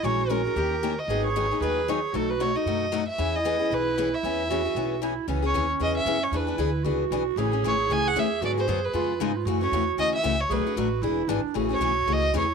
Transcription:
X:1
M:4/4
L:1/8
Q:"Swing" 1/4=229
K:E
V:1 name="Violin"
c2 ^A4- A d- | d c3 B2 c2 | A B c d4 e- | e d3 B3 e- |
e6 z2 | [K:C#m] z c2 z d e2 c | B4 z4 | z2 c2 g f e2 |
=d ^B2 =B4 z | z c2 z d e2 c | B4 z4 | z c3 d2 c2 |]
V:2 name="Clarinet"
F4 =G3 z | G4 G4 | F6 z2 | E8- |
E2 F4 E2 | [K:C#m] C8 | =D2 E2 F4 | G8 |
F2 G2 ^E2 D E | F6 z2 | G2 F2 E2 =D2 | F6 E2 |]
V:3 name="Steel-string acoustic guitar"
[E,G,CG^A] z [E,G,CGA] [CGA] [D,^A,C=GA] z [D,A,CGA] z | [D,F,B,DG] z [D,F,B,DG] [B,DG] [D,F,B,DG] z [D,F,B,DG] z | [B,,F,A,DF] z [B,,F,A,DF] [A,DF] [B,,F,A,DF] z [B,,F,A,DF] z | [E,B,CG] z [E,B,CG] [B,CG] [E,B,CG] z [E,B,CG] z |
[E,B,CG] z [E,B,CG] [B,CG] [E,B,CG] z [E,B,CG] z | [K:C#m] [C,E,B,CG] [B,CG] [C,E,B,CG] z [C,E,B,CG] z [C,E,B,CG] z | [E,B,=DG] [B,DG] [E,B,DG] z [E,B,DG] z [E,B,DG] z | [C,E,A,CG] [A,CG] [C,E,A,CG] z [C,E,A,CG] z [C,E,A,CG] z |
[=D,F,B,FG] [B,FG] [D,F,B,FG] z [C,G,B,^EG] z [C,G,B,EG] z | [C,E,A,CF] [A,CF] [C,E,A,CF] z [C,E,A,CF] z [C,E,A,CF] z | [B,,F,A,=DF] [A,DF] [B,,F,A,DF] z [E,B,DG] z [E,B,DG] z | [C,E,A,CG] [A,CG] [C,E,A,CG] z [C,E,A,CG] z [C,E,A,CG] z |]
V:4 name="Upright bass" clef=bass
^A,,,4 D,,4 | G,,,4 D,,4 | B,,,4 F,,4 | E,,4 B,,,4 |
E,,4 B,,,4 | [K:C#m] C,,2 D,,2 E,,2 F,,2 | E,,2 =D,,2 C,,2 B,,,2 | A,,,2 G,,,2 C,,2 E,,2 |
G,,2 F,,2 ^E,,2 G,,2 | F,,2 E,,2 D,,2 C,,2 | B,,, z A,,,2 E,,,2 G,,, z | A,,,2 B,,,2 C,,2 E,,2 |]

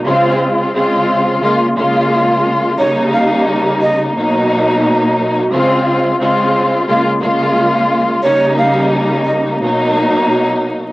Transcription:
X:1
M:4/4
L:1/16
Q:"Swing 16ths" 1/4=88
K:Bbdor
V:1 name="Flute"
z16 | d2 f2 z2 e z8 z | z16 | d2 f2 z2 e z8 z |]
V:2 name="String section"
[D,A,CF]4 [D,A,CF]4 [D,A,B,F]2 [D,A,B,F]6 | [D,G,B,E]8 [=B,,^F,^A,^D]8 | [D,A,CF]4 [D,A,CF]4 [D,A,B,F]2 [D,A,B,F]6 | [D,G,B,E]8 [=B,,^F,^A,^D]8 |]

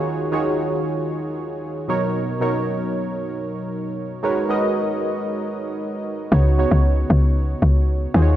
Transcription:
X:1
M:4/4
L:1/16
Q:1/4=115
K:Dbmix
V:1 name="Synth keys"
[E,EFGAd]2 [E,EFGAd]6 z6 [=B,,^F,^D^A^c]2- | [=B,,^F,^D^A^c]2 [B,,F,DAc]6 z8 | [A,EGBcd]2 [A,EGBce]6 z8 | [D,CEGd]2 [D,CEGd]6 z6 [E,EFGA=cd]2 |]
V:2 name="Log drum bass" clef=bass
z16 | z16 | z16 | D,,3 D,,3 D,,4 D,,4 E,,2 |]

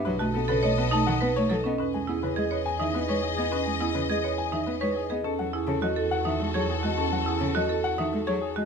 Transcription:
X:1
M:3/4
L:1/16
Q:1/4=104
K:Bphr
V:1 name="Grand piano"
B a A B ^d B a f B ^c A d | [K:E] B g G B d B g e B c G d | B g G B d B g e B c G d | A f G A d A f e A c G d |
A f G A d A f e A c G d |]
V:2 name="String section"
[A^d]8- [Ad]3 z | [K:E] [Gd]12- | [Gd]8- [Gd]3 z | [FA]12- |
[FA]8- [FA]3 z |]
V:3 name="Marimba"
z F z A ^c z ^D z B z A ^C | [K:E] C z E z G c z D z B z G | C z E z G c z D z B z G | C z E z F A z D z G z F |
C z E z F A z D z G z F |]
V:4 name="Cello" clef=bass
F, A, B, ^C, A, B, A, ^D, B, A, F, B, | [K:E] z G, B, C, G, z2 D, B, G, z B, | z G, B, C, G, z2 D, B, G, z B, | z F, z C, F, z2 D, G, F, z G, |
z F, z C, F, z2 D, G, F, z G, |]
V:5 name="Double bass" clef=bass
B,,,12 | [K:E] E,,12- | E,,12 | E,,12- |
E,,12 |]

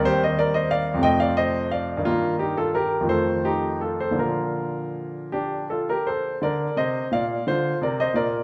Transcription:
X:1
M:6/8
L:1/16
Q:3/8=58
K:Bb
V:1 name="Grand piano"
[Gc] [ce] [Bd] [ce] [df]2 [eg] [df] [ce]2 [df]2 | [B,F]2 [EG] [FA] [GB]2 [Ac]2 [EG]2 [FA] [Ac] | [FB]6 [DG]2 [FA] [GB] [Ac]2 | [Bd]2 [ce]2 [df]2 [Fc]2 [Bd] [ce] [Bd]2 |]
V:2 name="Grand piano" clef=bass
[E,,E,G,C]6 [F,,C,A,C]6 | [G,,E,]6 [F,,E,F,A,]6 | [B,,D,F,B,]12 | D,2 C,2 B,,2 D,2 C,2 B,,2 |]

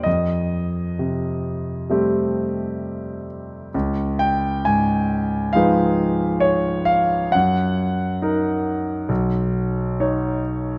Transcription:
X:1
M:4/4
L:1/8
Q:1/4=67
K:Fdor
V:1 name="Grand piano"
e6- e z | z g a2 f2 _d f | _g6- g z |]
V:2 name="Grand piano" clef=bass
F,,2 C,2 [G,=A,CG]4 | _D,,2 A,,2 [F,A,E_c]4 | _G,,2 [EB]2 =B,,,2 [^D^c]2 |]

